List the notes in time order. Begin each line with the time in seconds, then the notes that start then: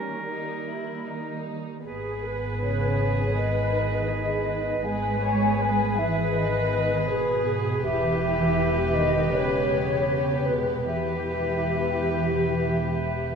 Already playing: D#3 G3 A#3 C#4 A#4
0.30 D#4
0.69 E4
1.08 D#4
1.84 G#1 B3 G#4 B4
2.23 B4
2.60 C#3 B4 C#5
2.98 G#4
3.35 D#3 B4 D#5
4.10 G#4
4.47 B4
4.85 G#1 G#3 B3 G#4 B4 G#5
5.22 C#5
5.60 B4
5.97 E3 B4 E5
6.34 D#3 B4 D#5
7.09 B2 G#4 B4
7.84 E1 E3 B3 G4 B4 E5
8.95 D#3 D#5
9.32 C#3 B4 C#5
9.70 G#3
10.08 G4
10.46 B2 G#3 B4
10.86 E1 E3 B3 G4 B4 E5